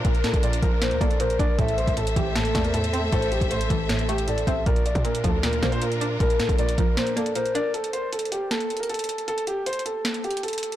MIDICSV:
0, 0, Header, 1, 7, 480
1, 0, Start_track
1, 0, Tempo, 384615
1, 61, Time_signature, 4, 2, 24, 8
1, 13430, End_track
2, 0, Start_track
2, 0, Title_t, "Soft synth lead"
2, 0, Program_c, 0, 80
2, 61, Note_on_c, 0, 70, 93
2, 512, Note_off_c, 0, 70, 0
2, 1020, Note_on_c, 0, 72, 96
2, 1248, Note_off_c, 0, 72, 0
2, 1262, Note_on_c, 0, 74, 88
2, 1489, Note_off_c, 0, 74, 0
2, 1501, Note_on_c, 0, 72, 87
2, 1729, Note_off_c, 0, 72, 0
2, 1739, Note_on_c, 0, 70, 86
2, 1968, Note_off_c, 0, 70, 0
2, 1983, Note_on_c, 0, 76, 120
2, 2433, Note_off_c, 0, 76, 0
2, 3179, Note_on_c, 0, 74, 89
2, 3408, Note_off_c, 0, 74, 0
2, 3902, Note_on_c, 0, 72, 101
2, 4353, Note_off_c, 0, 72, 0
2, 5342, Note_on_c, 0, 74, 97
2, 5569, Note_off_c, 0, 74, 0
2, 5586, Note_on_c, 0, 76, 90
2, 5811, Note_off_c, 0, 76, 0
2, 5819, Note_on_c, 0, 74, 97
2, 6271, Note_off_c, 0, 74, 0
2, 7020, Note_on_c, 0, 72, 85
2, 7249, Note_off_c, 0, 72, 0
2, 7741, Note_on_c, 0, 70, 95
2, 8192, Note_off_c, 0, 70, 0
2, 8700, Note_on_c, 0, 72, 98
2, 8928, Note_off_c, 0, 72, 0
2, 8941, Note_on_c, 0, 74, 88
2, 9169, Note_off_c, 0, 74, 0
2, 9182, Note_on_c, 0, 72, 87
2, 9409, Note_off_c, 0, 72, 0
2, 9420, Note_on_c, 0, 70, 86
2, 9649, Note_off_c, 0, 70, 0
2, 13430, End_track
3, 0, Start_track
3, 0, Title_t, "Grand piano"
3, 0, Program_c, 1, 0
3, 59, Note_on_c, 1, 70, 95
3, 242, Note_off_c, 1, 70, 0
3, 299, Note_on_c, 1, 69, 78
3, 482, Note_off_c, 1, 69, 0
3, 541, Note_on_c, 1, 74, 82
3, 723, Note_off_c, 1, 74, 0
3, 780, Note_on_c, 1, 70, 92
3, 1232, Note_off_c, 1, 70, 0
3, 1261, Note_on_c, 1, 69, 82
3, 1443, Note_off_c, 1, 69, 0
3, 1499, Note_on_c, 1, 70, 85
3, 1682, Note_off_c, 1, 70, 0
3, 1739, Note_on_c, 1, 74, 92
3, 1922, Note_off_c, 1, 74, 0
3, 1979, Note_on_c, 1, 69, 84
3, 2162, Note_off_c, 1, 69, 0
3, 2218, Note_on_c, 1, 72, 76
3, 2402, Note_off_c, 1, 72, 0
3, 2461, Note_on_c, 1, 69, 84
3, 2644, Note_off_c, 1, 69, 0
3, 2698, Note_on_c, 1, 67, 83
3, 2882, Note_off_c, 1, 67, 0
3, 2940, Note_on_c, 1, 69, 90
3, 3279, Note_off_c, 1, 69, 0
3, 3299, Note_on_c, 1, 70, 81
3, 3391, Note_off_c, 1, 70, 0
3, 3421, Note_on_c, 1, 69, 88
3, 3872, Note_off_c, 1, 69, 0
3, 3900, Note_on_c, 1, 69, 108
3, 4083, Note_off_c, 1, 69, 0
3, 4140, Note_on_c, 1, 67, 84
3, 4323, Note_off_c, 1, 67, 0
3, 4380, Note_on_c, 1, 72, 89
3, 4563, Note_off_c, 1, 72, 0
3, 4619, Note_on_c, 1, 69, 82
3, 5071, Note_off_c, 1, 69, 0
3, 5101, Note_on_c, 1, 67, 85
3, 5283, Note_off_c, 1, 67, 0
3, 5339, Note_on_c, 1, 69, 79
3, 5791, Note_off_c, 1, 69, 0
3, 5820, Note_on_c, 1, 70, 94
3, 6003, Note_off_c, 1, 70, 0
3, 6059, Note_on_c, 1, 74, 78
3, 6242, Note_off_c, 1, 74, 0
3, 6300, Note_on_c, 1, 70, 81
3, 6482, Note_off_c, 1, 70, 0
3, 6541, Note_on_c, 1, 69, 78
3, 6723, Note_off_c, 1, 69, 0
3, 6781, Note_on_c, 1, 70, 94
3, 7119, Note_off_c, 1, 70, 0
3, 7139, Note_on_c, 1, 72, 98
3, 7231, Note_off_c, 1, 72, 0
3, 7261, Note_on_c, 1, 70, 88
3, 7712, Note_off_c, 1, 70, 0
3, 7739, Note_on_c, 1, 70, 97
3, 7922, Note_off_c, 1, 70, 0
3, 7979, Note_on_c, 1, 69, 76
3, 8162, Note_off_c, 1, 69, 0
3, 8221, Note_on_c, 1, 74, 83
3, 8403, Note_off_c, 1, 74, 0
3, 8461, Note_on_c, 1, 70, 88
3, 8912, Note_off_c, 1, 70, 0
3, 8941, Note_on_c, 1, 69, 77
3, 9124, Note_off_c, 1, 69, 0
3, 9180, Note_on_c, 1, 70, 83
3, 9363, Note_off_c, 1, 70, 0
3, 9421, Note_on_c, 1, 74, 93
3, 9603, Note_off_c, 1, 74, 0
3, 9660, Note_on_c, 1, 69, 83
3, 9843, Note_off_c, 1, 69, 0
3, 9899, Note_on_c, 1, 72, 78
3, 10082, Note_off_c, 1, 72, 0
3, 10142, Note_on_c, 1, 69, 78
3, 10324, Note_off_c, 1, 69, 0
3, 10379, Note_on_c, 1, 67, 79
3, 10562, Note_off_c, 1, 67, 0
3, 10620, Note_on_c, 1, 69, 91
3, 10959, Note_off_c, 1, 69, 0
3, 10980, Note_on_c, 1, 70, 80
3, 11072, Note_off_c, 1, 70, 0
3, 11101, Note_on_c, 1, 69, 89
3, 11552, Note_off_c, 1, 69, 0
3, 11579, Note_on_c, 1, 69, 99
3, 11762, Note_off_c, 1, 69, 0
3, 11821, Note_on_c, 1, 67, 82
3, 12003, Note_off_c, 1, 67, 0
3, 12060, Note_on_c, 1, 72, 86
3, 12243, Note_off_c, 1, 72, 0
3, 12299, Note_on_c, 1, 69, 77
3, 12751, Note_off_c, 1, 69, 0
3, 12781, Note_on_c, 1, 67, 83
3, 12963, Note_off_c, 1, 67, 0
3, 13021, Note_on_c, 1, 69, 78
3, 13430, Note_off_c, 1, 69, 0
3, 13430, End_track
4, 0, Start_track
4, 0, Title_t, "String section"
4, 0, Program_c, 2, 48
4, 0, Note_on_c, 2, 62, 85
4, 0, Note_on_c, 2, 65, 75
4, 0, Note_on_c, 2, 70, 90
4, 1942, Note_off_c, 2, 65, 0
4, 1943, Note_off_c, 2, 62, 0
4, 1943, Note_off_c, 2, 70, 0
4, 1979, Note_on_c, 2, 72, 74
4, 1980, Note_on_c, 2, 57, 82
4, 1980, Note_on_c, 2, 69, 75
4, 1980, Note_on_c, 2, 76, 88
4, 5782, Note_off_c, 2, 57, 0
4, 5782, Note_off_c, 2, 69, 0
4, 5782, Note_off_c, 2, 72, 0
4, 5782, Note_off_c, 2, 76, 0
4, 5819, Note_on_c, 2, 62, 83
4, 5819, Note_on_c, 2, 65, 74
4, 5819, Note_on_c, 2, 70, 88
4, 9621, Note_off_c, 2, 70, 0
4, 9622, Note_off_c, 2, 62, 0
4, 9622, Note_off_c, 2, 65, 0
4, 13430, End_track
5, 0, Start_track
5, 0, Title_t, "Synth pluck"
5, 0, Program_c, 3, 84
5, 0, Note_on_c, 3, 58, 86
5, 0, Note_on_c, 3, 62, 92
5, 61, Note_on_c, 3, 46, 93
5, 527, Note_off_c, 3, 46, 0
5, 542, Note_off_c, 3, 58, 0
5, 542, Note_on_c, 3, 46, 91
5, 779, Note_on_c, 3, 53, 84
5, 1005, Note_off_c, 3, 46, 0
5, 1020, Note_off_c, 3, 62, 0
5, 1020, Note_on_c, 3, 46, 89
5, 1261, Note_on_c, 3, 58, 88
5, 1484, Note_off_c, 3, 46, 0
5, 1499, Note_on_c, 3, 46, 87
5, 1739, Note_on_c, 3, 62, 89
5, 1978, Note_on_c, 3, 45, 104
5, 1980, Note_off_c, 3, 46, 0
5, 1980, Note_off_c, 3, 53, 0
5, 1980, Note_off_c, 3, 62, 0
5, 1981, Note_off_c, 3, 58, 0
5, 2445, Note_off_c, 3, 45, 0
5, 2460, Note_on_c, 3, 45, 78
5, 2698, Note_on_c, 3, 52, 85
5, 2924, Note_off_c, 3, 45, 0
5, 2939, Note_on_c, 3, 45, 99
5, 3179, Note_on_c, 3, 57, 89
5, 3404, Note_off_c, 3, 45, 0
5, 3419, Note_on_c, 3, 45, 90
5, 3661, Note_on_c, 3, 60, 95
5, 3885, Note_off_c, 3, 45, 0
5, 3899, Note_off_c, 3, 52, 0
5, 3900, Note_on_c, 3, 45, 97
5, 4366, Note_off_c, 3, 45, 0
5, 4380, Note_off_c, 3, 57, 0
5, 4381, Note_on_c, 3, 45, 90
5, 4621, Note_on_c, 3, 52, 83
5, 4846, Note_off_c, 3, 45, 0
5, 4861, Note_off_c, 3, 60, 0
5, 4861, Note_on_c, 3, 45, 97
5, 5099, Note_on_c, 3, 57, 91
5, 5327, Note_off_c, 3, 45, 0
5, 5342, Note_on_c, 3, 45, 79
5, 5581, Note_on_c, 3, 60, 91
5, 5820, Note_off_c, 3, 57, 0
5, 5821, Note_off_c, 3, 52, 0
5, 5821, Note_off_c, 3, 60, 0
5, 5822, Note_off_c, 3, 45, 0
5, 5823, Note_on_c, 3, 46, 98
5, 6285, Note_off_c, 3, 46, 0
5, 6300, Note_on_c, 3, 46, 90
5, 6537, Note_on_c, 3, 53, 87
5, 6763, Note_off_c, 3, 46, 0
5, 6778, Note_on_c, 3, 46, 95
5, 7023, Note_on_c, 3, 58, 87
5, 7245, Note_off_c, 3, 46, 0
5, 7260, Note_on_c, 3, 46, 86
5, 7499, Note_on_c, 3, 62, 91
5, 7725, Note_off_c, 3, 46, 0
5, 7739, Note_off_c, 3, 53, 0
5, 7740, Note_on_c, 3, 46, 93
5, 8207, Note_off_c, 3, 46, 0
5, 8222, Note_off_c, 3, 58, 0
5, 8222, Note_on_c, 3, 46, 88
5, 8458, Note_on_c, 3, 53, 84
5, 8684, Note_off_c, 3, 46, 0
5, 8699, Note_on_c, 3, 46, 91
5, 8700, Note_off_c, 3, 62, 0
5, 8942, Note_on_c, 3, 58, 91
5, 9165, Note_off_c, 3, 46, 0
5, 9180, Note_on_c, 3, 46, 89
5, 9420, Note_on_c, 3, 62, 86
5, 9659, Note_off_c, 3, 53, 0
5, 9660, Note_off_c, 3, 46, 0
5, 9660, Note_off_c, 3, 62, 0
5, 9661, Note_off_c, 3, 58, 0
5, 13430, End_track
6, 0, Start_track
6, 0, Title_t, "808-style bass"
6, 0, Program_c, 4, 38
6, 61, Note_on_c, 4, 34, 108
6, 300, Note_on_c, 4, 46, 99
6, 318, Note_off_c, 4, 34, 0
6, 414, Note_off_c, 4, 46, 0
6, 420, Note_on_c, 4, 34, 101
6, 766, Note_off_c, 4, 34, 0
6, 780, Note_on_c, 4, 34, 106
6, 1141, Note_on_c, 4, 38, 102
6, 1159, Note_off_c, 4, 34, 0
6, 1252, Note_off_c, 4, 38, 0
6, 1259, Note_on_c, 4, 34, 106
6, 1721, Note_off_c, 4, 34, 0
6, 1740, Note_on_c, 4, 34, 106
6, 1971, Note_off_c, 4, 34, 0
6, 1980, Note_on_c, 4, 33, 112
6, 2326, Note_off_c, 4, 33, 0
6, 2340, Note_on_c, 4, 33, 103
6, 2686, Note_off_c, 4, 33, 0
6, 2700, Note_on_c, 4, 33, 105
6, 3161, Note_off_c, 4, 33, 0
6, 3180, Note_on_c, 4, 40, 102
6, 3871, Note_off_c, 4, 40, 0
6, 3901, Note_on_c, 4, 33, 109
6, 4246, Note_off_c, 4, 33, 0
6, 4260, Note_on_c, 4, 33, 104
6, 4606, Note_off_c, 4, 33, 0
6, 4620, Note_on_c, 4, 33, 102
6, 5542, Note_off_c, 4, 33, 0
6, 5581, Note_on_c, 4, 33, 108
6, 5811, Note_off_c, 4, 33, 0
6, 5821, Note_on_c, 4, 34, 106
6, 6166, Note_off_c, 4, 34, 0
6, 6180, Note_on_c, 4, 46, 104
6, 6526, Note_off_c, 4, 46, 0
6, 6540, Note_on_c, 4, 38, 105
6, 7001, Note_off_c, 4, 38, 0
6, 7020, Note_on_c, 4, 46, 103
6, 7712, Note_off_c, 4, 46, 0
6, 7741, Note_on_c, 4, 34, 106
6, 7981, Note_on_c, 4, 46, 99
6, 7999, Note_off_c, 4, 34, 0
6, 8095, Note_off_c, 4, 46, 0
6, 8100, Note_on_c, 4, 34, 105
6, 8446, Note_off_c, 4, 34, 0
6, 8461, Note_on_c, 4, 34, 105
6, 8701, Note_off_c, 4, 34, 0
6, 13430, End_track
7, 0, Start_track
7, 0, Title_t, "Drums"
7, 60, Note_on_c, 9, 36, 120
7, 60, Note_on_c, 9, 42, 68
7, 182, Note_off_c, 9, 42, 0
7, 182, Note_on_c, 9, 42, 55
7, 185, Note_off_c, 9, 36, 0
7, 300, Note_off_c, 9, 42, 0
7, 300, Note_on_c, 9, 42, 59
7, 301, Note_on_c, 9, 38, 102
7, 419, Note_on_c, 9, 36, 93
7, 421, Note_off_c, 9, 42, 0
7, 421, Note_on_c, 9, 42, 58
7, 426, Note_off_c, 9, 38, 0
7, 537, Note_off_c, 9, 42, 0
7, 537, Note_on_c, 9, 42, 85
7, 544, Note_off_c, 9, 36, 0
7, 662, Note_off_c, 9, 42, 0
7, 663, Note_on_c, 9, 42, 84
7, 780, Note_on_c, 9, 36, 97
7, 781, Note_off_c, 9, 42, 0
7, 781, Note_on_c, 9, 42, 77
7, 904, Note_off_c, 9, 36, 0
7, 906, Note_off_c, 9, 42, 0
7, 1019, Note_on_c, 9, 38, 122
7, 1023, Note_on_c, 9, 42, 80
7, 1137, Note_off_c, 9, 42, 0
7, 1137, Note_on_c, 9, 42, 54
7, 1144, Note_off_c, 9, 38, 0
7, 1259, Note_on_c, 9, 36, 94
7, 1262, Note_off_c, 9, 42, 0
7, 1264, Note_on_c, 9, 42, 86
7, 1380, Note_off_c, 9, 42, 0
7, 1380, Note_on_c, 9, 42, 59
7, 1384, Note_off_c, 9, 36, 0
7, 1497, Note_off_c, 9, 42, 0
7, 1497, Note_on_c, 9, 42, 83
7, 1621, Note_off_c, 9, 42, 0
7, 1623, Note_on_c, 9, 42, 52
7, 1740, Note_on_c, 9, 36, 97
7, 1743, Note_off_c, 9, 42, 0
7, 1743, Note_on_c, 9, 42, 75
7, 1865, Note_off_c, 9, 36, 0
7, 1868, Note_off_c, 9, 42, 0
7, 1980, Note_on_c, 9, 36, 123
7, 1980, Note_on_c, 9, 42, 70
7, 2102, Note_off_c, 9, 42, 0
7, 2102, Note_on_c, 9, 42, 55
7, 2105, Note_off_c, 9, 36, 0
7, 2220, Note_off_c, 9, 42, 0
7, 2220, Note_on_c, 9, 42, 58
7, 2339, Note_on_c, 9, 36, 92
7, 2341, Note_off_c, 9, 42, 0
7, 2341, Note_on_c, 9, 42, 58
7, 2457, Note_off_c, 9, 42, 0
7, 2457, Note_on_c, 9, 42, 87
7, 2464, Note_off_c, 9, 36, 0
7, 2582, Note_off_c, 9, 42, 0
7, 2583, Note_on_c, 9, 42, 85
7, 2700, Note_on_c, 9, 36, 95
7, 2701, Note_off_c, 9, 42, 0
7, 2701, Note_on_c, 9, 42, 78
7, 2824, Note_off_c, 9, 36, 0
7, 2826, Note_off_c, 9, 42, 0
7, 2940, Note_on_c, 9, 38, 120
7, 2944, Note_on_c, 9, 42, 78
7, 3057, Note_off_c, 9, 42, 0
7, 3057, Note_on_c, 9, 42, 56
7, 3064, Note_off_c, 9, 38, 0
7, 3180, Note_on_c, 9, 36, 95
7, 3180, Note_on_c, 9, 38, 100
7, 3182, Note_off_c, 9, 42, 0
7, 3184, Note_on_c, 9, 42, 88
7, 3301, Note_off_c, 9, 42, 0
7, 3301, Note_on_c, 9, 42, 59
7, 3304, Note_off_c, 9, 36, 0
7, 3305, Note_off_c, 9, 38, 0
7, 3418, Note_off_c, 9, 42, 0
7, 3418, Note_on_c, 9, 42, 81
7, 3542, Note_off_c, 9, 42, 0
7, 3544, Note_on_c, 9, 42, 51
7, 3664, Note_off_c, 9, 42, 0
7, 3664, Note_on_c, 9, 42, 73
7, 3789, Note_off_c, 9, 42, 0
7, 3900, Note_on_c, 9, 42, 67
7, 3901, Note_on_c, 9, 36, 116
7, 4023, Note_off_c, 9, 42, 0
7, 4023, Note_on_c, 9, 42, 55
7, 4025, Note_off_c, 9, 36, 0
7, 4140, Note_off_c, 9, 42, 0
7, 4140, Note_on_c, 9, 42, 59
7, 4260, Note_on_c, 9, 36, 97
7, 4262, Note_off_c, 9, 42, 0
7, 4262, Note_on_c, 9, 42, 59
7, 4377, Note_off_c, 9, 42, 0
7, 4377, Note_on_c, 9, 42, 90
7, 4384, Note_off_c, 9, 36, 0
7, 4502, Note_off_c, 9, 42, 0
7, 4503, Note_on_c, 9, 42, 84
7, 4620, Note_on_c, 9, 36, 95
7, 4622, Note_off_c, 9, 42, 0
7, 4622, Note_on_c, 9, 42, 80
7, 4745, Note_off_c, 9, 36, 0
7, 4747, Note_off_c, 9, 42, 0
7, 4860, Note_on_c, 9, 38, 124
7, 4864, Note_on_c, 9, 42, 78
7, 4977, Note_off_c, 9, 42, 0
7, 4977, Note_on_c, 9, 42, 57
7, 4985, Note_off_c, 9, 38, 0
7, 5102, Note_off_c, 9, 42, 0
7, 5105, Note_on_c, 9, 42, 86
7, 5220, Note_off_c, 9, 42, 0
7, 5220, Note_on_c, 9, 42, 57
7, 5337, Note_off_c, 9, 42, 0
7, 5337, Note_on_c, 9, 42, 82
7, 5462, Note_off_c, 9, 42, 0
7, 5463, Note_on_c, 9, 42, 51
7, 5581, Note_on_c, 9, 36, 95
7, 5584, Note_off_c, 9, 42, 0
7, 5584, Note_on_c, 9, 42, 75
7, 5706, Note_off_c, 9, 36, 0
7, 5709, Note_off_c, 9, 42, 0
7, 5820, Note_on_c, 9, 36, 121
7, 5820, Note_on_c, 9, 42, 71
7, 5943, Note_off_c, 9, 42, 0
7, 5943, Note_on_c, 9, 42, 55
7, 5945, Note_off_c, 9, 36, 0
7, 6061, Note_off_c, 9, 42, 0
7, 6061, Note_on_c, 9, 42, 60
7, 6180, Note_on_c, 9, 36, 97
7, 6183, Note_off_c, 9, 42, 0
7, 6183, Note_on_c, 9, 42, 59
7, 6298, Note_off_c, 9, 42, 0
7, 6298, Note_on_c, 9, 42, 89
7, 6305, Note_off_c, 9, 36, 0
7, 6423, Note_off_c, 9, 42, 0
7, 6424, Note_on_c, 9, 42, 88
7, 6540, Note_on_c, 9, 36, 95
7, 6542, Note_off_c, 9, 42, 0
7, 6542, Note_on_c, 9, 42, 79
7, 6665, Note_off_c, 9, 36, 0
7, 6667, Note_off_c, 9, 42, 0
7, 6781, Note_on_c, 9, 38, 119
7, 6785, Note_on_c, 9, 42, 77
7, 6898, Note_off_c, 9, 42, 0
7, 6898, Note_on_c, 9, 42, 55
7, 6905, Note_off_c, 9, 38, 0
7, 7020, Note_on_c, 9, 36, 92
7, 7021, Note_on_c, 9, 38, 100
7, 7023, Note_off_c, 9, 42, 0
7, 7025, Note_on_c, 9, 42, 86
7, 7141, Note_off_c, 9, 42, 0
7, 7141, Note_on_c, 9, 42, 55
7, 7145, Note_off_c, 9, 36, 0
7, 7146, Note_off_c, 9, 38, 0
7, 7258, Note_off_c, 9, 42, 0
7, 7258, Note_on_c, 9, 42, 83
7, 7383, Note_off_c, 9, 42, 0
7, 7384, Note_on_c, 9, 42, 51
7, 7505, Note_off_c, 9, 42, 0
7, 7505, Note_on_c, 9, 42, 74
7, 7630, Note_off_c, 9, 42, 0
7, 7741, Note_on_c, 9, 36, 117
7, 7741, Note_on_c, 9, 42, 70
7, 7863, Note_off_c, 9, 42, 0
7, 7863, Note_on_c, 9, 42, 57
7, 7866, Note_off_c, 9, 36, 0
7, 7981, Note_off_c, 9, 42, 0
7, 7981, Note_on_c, 9, 42, 60
7, 7982, Note_on_c, 9, 38, 105
7, 8100, Note_on_c, 9, 36, 92
7, 8102, Note_off_c, 9, 42, 0
7, 8102, Note_on_c, 9, 42, 58
7, 8107, Note_off_c, 9, 38, 0
7, 8218, Note_off_c, 9, 42, 0
7, 8218, Note_on_c, 9, 42, 88
7, 8225, Note_off_c, 9, 36, 0
7, 8343, Note_off_c, 9, 42, 0
7, 8344, Note_on_c, 9, 42, 85
7, 8461, Note_on_c, 9, 36, 99
7, 8463, Note_off_c, 9, 42, 0
7, 8463, Note_on_c, 9, 42, 78
7, 8585, Note_off_c, 9, 36, 0
7, 8588, Note_off_c, 9, 42, 0
7, 8701, Note_on_c, 9, 38, 122
7, 8705, Note_on_c, 9, 42, 77
7, 8819, Note_off_c, 9, 42, 0
7, 8819, Note_on_c, 9, 42, 57
7, 8826, Note_off_c, 9, 38, 0
7, 8944, Note_off_c, 9, 42, 0
7, 8946, Note_on_c, 9, 42, 87
7, 9061, Note_off_c, 9, 42, 0
7, 9061, Note_on_c, 9, 42, 56
7, 9178, Note_off_c, 9, 42, 0
7, 9178, Note_on_c, 9, 42, 79
7, 9303, Note_off_c, 9, 42, 0
7, 9304, Note_on_c, 9, 42, 51
7, 9425, Note_off_c, 9, 42, 0
7, 9425, Note_on_c, 9, 42, 76
7, 9550, Note_off_c, 9, 42, 0
7, 9661, Note_on_c, 9, 42, 65
7, 9783, Note_off_c, 9, 42, 0
7, 9783, Note_on_c, 9, 42, 53
7, 9901, Note_off_c, 9, 42, 0
7, 9901, Note_on_c, 9, 42, 81
7, 10025, Note_off_c, 9, 42, 0
7, 10141, Note_on_c, 9, 42, 83
7, 10221, Note_off_c, 9, 42, 0
7, 10221, Note_on_c, 9, 42, 65
7, 10301, Note_off_c, 9, 42, 0
7, 10301, Note_on_c, 9, 42, 54
7, 10382, Note_off_c, 9, 42, 0
7, 10382, Note_on_c, 9, 42, 83
7, 10507, Note_off_c, 9, 42, 0
7, 10620, Note_on_c, 9, 38, 119
7, 10624, Note_on_c, 9, 42, 73
7, 10738, Note_off_c, 9, 42, 0
7, 10738, Note_on_c, 9, 42, 53
7, 10745, Note_off_c, 9, 38, 0
7, 10861, Note_off_c, 9, 42, 0
7, 10861, Note_on_c, 9, 42, 48
7, 10941, Note_off_c, 9, 42, 0
7, 10941, Note_on_c, 9, 42, 64
7, 11021, Note_off_c, 9, 42, 0
7, 11021, Note_on_c, 9, 42, 84
7, 11101, Note_off_c, 9, 42, 0
7, 11101, Note_on_c, 9, 42, 47
7, 11161, Note_off_c, 9, 42, 0
7, 11161, Note_on_c, 9, 42, 55
7, 11220, Note_off_c, 9, 42, 0
7, 11220, Note_on_c, 9, 42, 68
7, 11281, Note_off_c, 9, 42, 0
7, 11281, Note_on_c, 9, 42, 81
7, 11344, Note_off_c, 9, 42, 0
7, 11344, Note_on_c, 9, 42, 76
7, 11460, Note_off_c, 9, 42, 0
7, 11460, Note_on_c, 9, 42, 56
7, 11580, Note_off_c, 9, 42, 0
7, 11580, Note_on_c, 9, 42, 66
7, 11703, Note_off_c, 9, 42, 0
7, 11703, Note_on_c, 9, 42, 52
7, 11821, Note_off_c, 9, 42, 0
7, 11821, Note_on_c, 9, 42, 77
7, 11945, Note_off_c, 9, 42, 0
7, 12061, Note_on_c, 9, 42, 78
7, 12141, Note_off_c, 9, 42, 0
7, 12141, Note_on_c, 9, 42, 65
7, 12221, Note_off_c, 9, 42, 0
7, 12221, Note_on_c, 9, 42, 50
7, 12302, Note_off_c, 9, 42, 0
7, 12302, Note_on_c, 9, 42, 84
7, 12427, Note_off_c, 9, 42, 0
7, 12541, Note_on_c, 9, 38, 117
7, 12545, Note_on_c, 9, 42, 74
7, 12658, Note_off_c, 9, 42, 0
7, 12658, Note_on_c, 9, 42, 54
7, 12665, Note_off_c, 9, 38, 0
7, 12781, Note_off_c, 9, 42, 0
7, 12781, Note_on_c, 9, 42, 47
7, 12861, Note_off_c, 9, 42, 0
7, 12861, Note_on_c, 9, 42, 64
7, 12941, Note_off_c, 9, 42, 0
7, 12941, Note_on_c, 9, 42, 83
7, 13021, Note_off_c, 9, 42, 0
7, 13021, Note_on_c, 9, 42, 46
7, 13081, Note_off_c, 9, 42, 0
7, 13081, Note_on_c, 9, 42, 58
7, 13141, Note_off_c, 9, 42, 0
7, 13141, Note_on_c, 9, 42, 69
7, 13201, Note_off_c, 9, 42, 0
7, 13201, Note_on_c, 9, 42, 81
7, 13265, Note_off_c, 9, 42, 0
7, 13265, Note_on_c, 9, 42, 79
7, 13381, Note_off_c, 9, 42, 0
7, 13381, Note_on_c, 9, 42, 57
7, 13430, Note_off_c, 9, 42, 0
7, 13430, End_track
0, 0, End_of_file